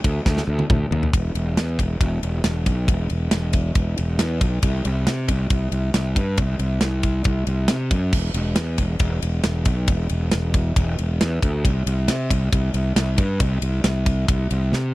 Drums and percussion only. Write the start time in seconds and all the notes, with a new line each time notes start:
0.04 kick, ride
0.26 kick, snare
0.37 snare
0.59 high tom
0.70 kick, mid tom
0.92 floor tom
1.03 floor tom
1.13 kick, ride
1.35 ride
1.57 snare, ride
1.79 kick, ride
2.01 kick, ride
2.23 ride
2.44 snare, ride
2.66 kick, ride
2.88 kick, ride
3.10 ride
3.31 snare, ride
3.53 kick, ride
3.75 kick, ride
3.97 ride
4.19 snare, ride
4.41 kick, ride
4.62 kick, ride
4.85 ride
5.07 snare, ride
5.28 kick, ride
5.50 kick, ride
5.72 ride
5.94 snare, ride
6.16 kick, ride
6.37 kick, ride
6.59 ride
6.81 snare, ride
7.03 kick, ride
7.24 kick, ride
7.47 ride
7.68 snare, ride
7.91 kick, ride
8.13 kick, crash
8.34 ride
8.56 snare, ride
8.78 kick, ride
8.99 kick, ride
9.22 ride
9.44 snare, ride
9.65 kick, ride
9.87 kick, ride
10.09 ride
10.31 snare, ride
10.54 kick, ride
10.76 kick, ride
10.98 ride
11.21 snare, ride
11.42 kick, ride
11.65 kick, ride
11.87 ride
12.08 snare, ride
12.30 kick, ride
12.53 kick, ride
12.74 ride
12.96 snare, ride
13.18 kick, ride
13.40 kick, ride
13.62 ride
13.84 snare, ride
14.06 kick, ride
14.28 kick, ride
14.51 ride
14.73 snare